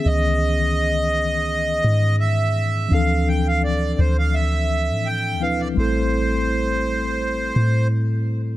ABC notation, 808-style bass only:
X:1
M:4/4
L:1/16
Q:"Swing 16ths" 1/4=84
K:C#phr
V:1 name="808-style bass" clef=bass
C,,8- C,,2 G,,6 | D,,6 D,,4- D,, A,,2- A,,/2 D,,2- D,,/2 | A,,,8- A,,,2 A,,6 |]